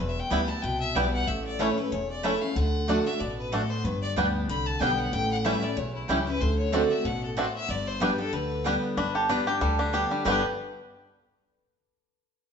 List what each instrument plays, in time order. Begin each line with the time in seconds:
0.00 upright bass E1, steel-string acoustic guitar E2, fiddle B4
0.09 fiddle E5
0.20 fiddle G5
0.30 upright bass D2, steel-string acoustic guitar E3 G3 B3 E4, five-string banjo G3 B3 E4, mandolin B3 E4 B4 G5, fiddle B5
0.48 steel-string acoustic guitar B3 E4, fiddle A5
0.62 upright bass C2, steel-string acoustic guitar B2, fiddle G5
0.80 fiddle E5
0.95 upright bass B1, steel-string acoustic guitar E3 G3 B3 E4, five-string banjo G3 B3 E4, mandolin B3 E4 B4 G5, fiddle D5
1.14 fiddle F#5
1.27 upright bass A1, steel-string acoustic guitar A2, fiddle E5
1.45 fiddle D5
1.59 steel-string acoustic guitar E3 A3 C#4 E4, mandolin A3 E4 C#5 A5, five-string banjo A3 C#4 E4, fiddle C#5
1.77 steel-string acoustic guitar C#4 E4, fiddle B4
1.92 upright bass E1, steel-string acoustic guitar E2, fiddle C#5
2.10 fiddle D5
2.23 steel-string acoustic guitar E3 A3 C#4 E4, mandolin A3 E4 C#5 A5, five-string banjo A3 C#4 E4, fiddle E5
2.42 steel-string acoustic guitar C#4 E4, fiddle F5
2.56 upright bass D2, steel-string acoustic guitar D3, fiddle F#5
2.88 steel-string acoustic guitar D3 A3 D4 F#4, mandolin A3 F#4 D5 A5, five-string banjo A3 D4
3.06 steel-string acoustic guitar D4 F#4, fiddle E5
3.20 upright bass A1, steel-string acoustic guitar B2, fiddle D5
3.38 fiddle B4
3.52 steel-string acoustic guitar A2, mandolin A3 F#4 D5 A5, five-string banjo A3 D4, fiddle A4
3.70 fiddle C5
3.84 upright bass G1, steel-string acoustic guitar G2, fiddle B4
4.02 fiddle D5
4.16 upright bass D2, steel-string acoustic guitar G3 B3 D4 G4, five-string banjo G3 B3 D4, mandolin B3 G4 D5 G5
4.49 upright bass C2, steel-string acoustic guitar D3, fiddle B5
4.66 fiddle A5
4.80 upright bass B1, steel-string acoustic guitar G3 B3 D4 G4, five-string banjo G3 B3 D4, mandolin B3 G4 D5 G5, fiddle G5
4.99 fiddle F#5
5.13 upright bass A1, steel-string acoustic guitar A2, fiddle G5
5.31 fiddle F#5
5.44 steel-string acoustic guitar E3 G3 C#4 E4, five-string banjo G3 C#4 E4, mandolin A3 E4 C#5 G5, fiddle E5
5.63 steel-string acoustic guitar C#4 E4, fiddle D5
5.77 upright bass B1, steel-string acoustic guitar E2, fiddle C#5
5.95 fiddle E4
6.08 upright bass C#2, steel-string acoustic guitar E3 G3 C#4 E4, five-string banjo G3 C#4 E4, mandolin A3 E4 C#5 G5, fiddle G4
6.27 steel-string acoustic guitar C#4 E4, fiddle B4
6.41 upright bass D2, steel-string acoustic guitar D3, fiddle C5
6.58 fiddle C#5
6.72 steel-string acoustic guitar D3 A3 C4 F#4, five-string banjo A3 C4 D4, mandolin C4 F#4 D5 A5, fiddle D5
6.90 steel-string acoustic guitar C4 F#4, fiddle E5
7.05 upright bass A1, steel-string acoustic guitar B2, fiddle F#5
7.24 fiddle A4
7.37 steel-string acoustic guitar A2, five-string banjo A3 C4 D4, mandolin C4 F#4 D5 A5, fiddle C5
7.55 fiddle E5
7.68 upright bass G1, steel-string acoustic guitar G2, fiddle D5
7.88 fiddle C5
8.00 steel-string acoustic guitar G3 B3 D4 G4, five-string banjo G3 B3 D4, mandolin B3 G4 D5 G5, fiddle B4
8.18 steel-string acoustic guitar D4 G4, fiddle A4
8.33 upright bass D2, steel-string acoustic guitar D3, fiddle B4
8.64 steel-string acoustic guitar G3 B3 D4 G4, five-string banjo G3 B3 D4, mandolin B3 G4 D5 G5
8.97 upright bass G1, steel-string acoustic guitar G2, five-string banjo D4, resonator guitar played with a steel bar B4
9.15 five-string banjo G4, resonator guitar played with a steel bar A4
9.29 steel-string acoustic guitar G3 B3 D4 G4, mandolin B3 G4 D5 G5, five-string banjo D4, resonator guitar played with a steel bar B4
9.47 steel-string acoustic guitar D4 G4, five-string banjo G4, resonator guitar played with a steel bar G4
9.61 upright bass D2, steel-string acoustic guitar D3, five-string banjo G3, resonator guitar played with a steel bar A4
9.79 five-string banjo D4, resonator guitar played with a steel bar G4
9.93 steel-string acoustic guitar G3 B3 D4 G4, mandolin B3 G4 D5 G5, five-string banjo G4
10.10 five-string banjo G3, steel-string acoustic guitar D4 G4
10.24 upright bass G1, steel-string acoustic guitar G2 D3 G3 B3 D4 G4, five-string banjo G3 B3, mandolin B3 G4 D5 G5, resonator guitar played with a steel bar B4, fiddle B4
10.30 five-string banjo D4 G4